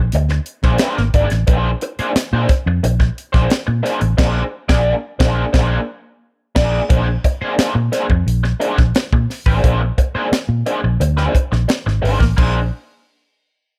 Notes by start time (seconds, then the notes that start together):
0.12 D2, muted overdriven electric guitar stroke, closed hi-hat
0.29 muted overdriven electric guitar stroke, snare
0.46 closed hi-hat
0.63 A#1 A#3 D4 G#4 C5, kick, snare
0.78 A#3 D4 G#4, snare, closed hi-hat
0.82 C5
0.97 G#1, muted overdriven electric guitar stroke, snare
1.14 G#1 A#3 D4 G#4 D5, kick, closed hi-hat
1.30 A1, muted overdriven electric guitar stroke, snare, closed hi-hat
1.47 A#1 A#3 D4 G#4 C5, kick, closed hi-hat
1.81 muted overdriven electric guitar stroke, closed hi-hat
1.99 A#3 D4 G#4 C5, muted fingered electric bass stroke, closed hi-hat
2.15 muted fingered electric bass stroke, muted overdriven electric guitar stroke, snare, closed hi-hat
2.33 A#2 A#3 D4 G#4 C5
2.49 muted overdriven electric guitar stroke, kick, snare, closed hi-hat
2.66 F2, muted overdriven electric guitar stroke
2.83 A#1, muted overdriven electric guitar stroke, closed hi-hat
3.00 muted overdriven electric guitar stroke, kick, snare
3.18 closed hi-hat
3.33 A#1 A#3 D4 G#4 C5, kick, snare
3.50 snare, closed hi-hat
3.67 A#2, muted overdriven electric guitar stroke
3.83 A#3 D4 G#4 C5, snare, closed hi-hat
4.01 A1, muted overdriven electric guitar stroke, closed hi-hat
4.18 A#1 A#3 D4 G#4 C5, kick, snare, crash
4.69 A#1 A#3 D4 G#4 D5, kick, snare
5.20 A#1 A#3 D4 G#4 C5, kick, snare
5.53 A#1 A#3 D4 G#4 C5, kick, snare
6.55 A#1 A#3 D4 G#4 D5, kick, snare, crash
6.89 A#1 A#3 D4 G#4 C5, kick, closed hi-hat
7.24 muted overdriven electric guitar stroke, kick, closed hi-hat
7.42 A#3 D4 G#4 C5, muted fingered electric bass stroke
7.58 A#3 D4 G#4 C5, muted fingered electric bass stroke, snare, closed hi-hat
7.75 A#2, muted overdriven electric guitar stroke
7.92 A#3 D4 G#4 C5, snare, closed hi-hat
8.10 F2, muted overdriven electric guitar stroke, kick
8.26 A#1, closed hi-hat
8.43 muted overdriven electric guitar stroke, snare
8.60 A#3 D4 G#4 C5, closed hi-hat
8.78 A#1, muted overdriven electric guitar stroke, kick, snare
8.95 muted overdriven electric guitar stroke, snare, closed hi-hat
9.13 A#2, muted overdriven electric guitar stroke, kick
9.30 snare, open hi-hat
9.46 A1 A#3 D4 G#4 C5, kick
9.64 A#1 A#3 D4 G#4 C5, kick, closed hi-hat
9.81 muted overdriven electric guitar stroke
9.98 muted overdriven electric guitar stroke, kick, closed hi-hat
10.15 A#3 D4 G#4 C5, muted fingered electric bass stroke
10.32 muted fingered electric bass stroke, muted overdriven electric guitar stroke, snare, closed hi-hat
10.49 A#2
10.66 A#3 D4 G#4 C5, closed hi-hat
10.84 A#1, muted overdriven electric guitar stroke
11.00 D2, muted overdriven electric guitar stroke, closed hi-hat
11.17 A#3 D4 G#4 C5, snare
11.35 muted overdriven electric guitar stroke, kick, closed hi-hat
11.52 A#1, muted overdriven electric guitar stroke, snare
11.68 muted overdriven electric guitar stroke, snare, closed hi-hat
11.86 G#1, muted overdriven electric guitar stroke, snare
12.02 G#1 A#3 D4 G#4 C5, open hi-hat
12.20 A1, muted overdriven electric guitar stroke, kick, snare
12.37 A#1 A#3 D4 G#4 C5, kick, crash